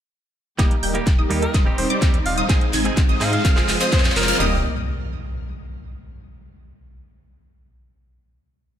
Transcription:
0.59 detuned saw bass D#1, string section D#3 G3 A#3 G4, clean electric guitar G3 A#3 D#4 G4, supersaw synth G3 A#3 D#4 A#4 D#5, synth pluck D#6, kick, clap, closed hi-hat, riser
0.71 closed hi-hat
0.83 detuned saw bass D#1, supersaw synth G3 A#3 D#4 A#4 G5, synth pluck G6, open hi-hat
0.94 clean electric guitar G3 A#3 D#4 G4, closed hi-hat
1.07 detuned saw bass D#1, kick, clap, closed hi-hat
1.19 supersaw synth G3 A#3 D#4 A#4 D#5, synth pluck D#6
1.30 detuned saw bass D#2, clean electric guitar G3 A#3 D#4 G4, open hi-hat
1.42 alto saxophone A#4, closed hi-hat
1.54 detuned saw bass D#1, string section C3 D#4, supersaw synth G3 C4 D#4 C5 D#5, synth pluck D#6, kick, clap, closed hi-hat
1.65 clean electric guitar G3 C4 D#4 G4
1.78 detuned saw bass D#1, alto saxophone C5, open hi-hat
1.90 supersaw synth G3 C4 D#4 C5 D5, alto saxophone C5, synth pluck D6, closed hi-hat
2.01 detuned saw bass D#2, clean electric guitar G3 C4 D#4 G4, kick, clap, closed hi-hat
2.14 closed hi-hat
2.26 detuned saw bass D#1, alto saxophone F5, open hi-hat
2.38 supersaw synth G3 C4 D#4 C5 D#5, alto saxophone F5, synth pluck D#6, closed hi-hat
2.49 detuned saw bass G#1, clean electric guitar G#2 G#3 C4 D#4 G#4, supersaw synth G#3 C4 D#4 C5 D#5, string section G#3, synth pluck D#6, kick, clap, closed hi-hat
2.61 closed hi-hat
2.73 detuned saw bass G#1, supersaw synth G#3 C4 D#4 C5 G#5, synth pluck G#6, clap, open hi-hat
2.85 clean electric guitar G#2 G#3 C4 D#4 G#4, closed hi-hat
2.97 detuned saw bass G#1, kick, clap, closed hi-hat
3.09 supersaw synth G#3 C4 D#4 C5 D#5, synth pluck D#6
3.20 detuned saw bass G#2, clean electric guitar G#3 C4 D#4 G#4, alto saxophone F5, clap, open hi-hat
3.33 alto saxophone F5, closed hi-hat
3.45 detuned saw bass F1, string section F3 F4, supersaw synth G#3 C4 F4 C5 F5, synth pluck F6, kick, clap, closed hi-hat
3.56 clean electric guitar G#3 C4 F4 G#4, clap
3.69 detuned saw bass F1, clap, open hi-hat
3.80 supersaw synth G#3 C4 F4 C5 D#5, alto saxophone C5, synth pluck D#6, clap, closed hi-hat
3.92 detuned saw bass F2, clean electric guitar G#3 C4 F4 G#4, alto saxophone C5, kick, clap, closed hi-hat
3.98 clap
4.04 clap, closed hi-hat
4.10 clap
4.16 detuned saw bass F1, alto saxophone A#4, clap, open hi-hat
4.22 clap
4.28 supersaw synth G#3 C4 F4 C5 F5, synth pluck F6, clap, closed hi-hat
4.34 clap
4.38 detuned saw bass D#1, string section D#3 G3 A#3 G4, clean electric guitar G3 A#3 D#4 G4, supersaw synth G3 A#3 D#4 A#4 D#5, synth pluck D#6, snare, clap, impact

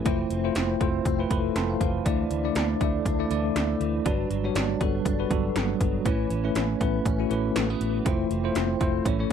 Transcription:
Already playing: clean electric guitar B3
0.05 fingered electric bass F1, clean electric guitar E3 C4, tine electric piano A3 E4 F4 C5, kick, closed hi-hat
0.30 fingered electric bass F1, clean electric guitar E3, closed hi-hat
0.44 tine electric piano A3 E4 F4 C5
0.55 fingered electric bass F1, clean electric guitar C4, snare, closed hi-hat
0.80 fingered electric bass F1, tine electric piano A3 E4 F4 C5, clean electric guitar A3, kick, closed hi-hat
1.05 fingered electric bass F1, clean electric guitar C4, kick, closed hi-hat
1.19 tine electric piano A3 E4 F4 B4
1.30 fingered electric bass F1, clean electric guitar E3, tine electric piano A3 E4 A4 B4 B5, kick, closed hi-hat
1.55 fingered electric bass F1, clean electric guitar A3, tine electric piano G5 A5 C6, snare, closed hi-hat
1.70 tine electric piano F5
1.81 fingered electric bass F1, clean electric guitar E3, tine electric piano C5 F5, kick, closed hi-hat
2.05 fingered electric bass D2, clean electric guitar E3 D4, tine electric piano A3 D4 E4 D5, kick, closed hi-hat
2.30 fingered electric bass D2, clean electric guitar E3, closed hi-hat
2.44 tine electric piano A3 D4 E4 D5
2.55 fingered electric bass D2, clean electric guitar D4, snare, closed hi-hat
2.80 fingered electric bass D2, tine electric piano A3 D4 E4 D5, clean electric guitar A3, kick, closed hi-hat
3.05 fingered electric bass D2, clean electric guitar D4, kick, closed hi-hat
3.19 tine electric piano A3 D4 E4 D5
3.30 fingered electric bass D2, clean electric guitar E3, tine electric piano A3 D4 E4 D5, closed hi-hat
3.56 fingered electric bass D2, clean electric guitar A3, snare, closed hi-hat
3.80 fingered electric bass D2, clean electric guitar E3, closed hi-hat
4.05 fingered electric bass G1, clean electric guitar F#3 D4, tine electric piano G3 D4 F#4 B4, kick, closed hi-hat
4.30 fingered electric bass G1, clean electric guitar F#3, closed hi-hat
4.44 tine electric piano G3 D4 F#4 C#5
4.55 fingered electric bass G1, clean electric guitar D4, snare, closed hi-hat
4.80 fingered electric bass G1, tine electric piano G3 D4 F#4 A4, clean electric guitar B3, kick, closed hi-hat
5.05 fingered electric bass G1, clean electric guitar D4, kick, closed hi-hat
5.19 tine electric piano G3 D4 F#4 B4
5.30 fingered electric bass G1, tine electric piano F#3 D4 F#4 A4, clean electric guitar F#3, kick, closed hi-hat
5.55 fingered electric bass G1, clean electric guitar B3, snare, closed hi-hat
5.80 fingered electric bass G1, clean electric guitar F#3, kick, closed hi-hat
6.05 fingered electric bass A1, clean electric guitar E3 C#4, tine electric piano A3 C#4 E4 B4, kick, closed hi-hat
6.30 fingered electric bass A1, clean electric guitar E3, closed hi-hat
6.44 tine electric piano A3 C#4 E4 B4
6.55 fingered electric bass A1, clean electric guitar C#4, snare, closed hi-hat
6.80 fingered electric bass A1, tine electric piano A3 C#4 E4 B4, clean electric guitar B3, kick, closed hi-hat
7.05 fingered electric bass A1, clean electric guitar C#4, kick, closed hi-hat
7.19 tine electric piano A3 C#4 E4 F#4
7.30 fingered electric bass A1, clean electric guitar E3, tine electric piano A3 C#4 E4 B4, closed hi-hat
7.56 fingered electric bass A1, clean electric guitar A3, snare, closed hi-hat
7.70 clean electric guitar B3
7.81 fingered electric bass A1, clean electric guitar E3, closed hi-hat
8.05 fingered electric bass F1, clean electric guitar E3 C4, tine electric piano A3 E4 F4 C5, kick, closed hi-hat
8.30 fingered electric bass F1, clean electric guitar E3, closed hi-hat
8.44 tine electric piano A3 E4 F4 C5
8.55 fingered electric bass F1, clean electric guitar C4, snare, closed hi-hat
8.80 fingered electric bass F1, tine electric piano A3 E4 F4 C5, clean electric guitar A3, kick, closed hi-hat
9.05 fingered electric bass A1, clean electric guitar E3, tine electric piano A3 C#4 E4 C#5, kick, closed hi-hat
9.19 tine electric piano A3 C#4 E4 C#5

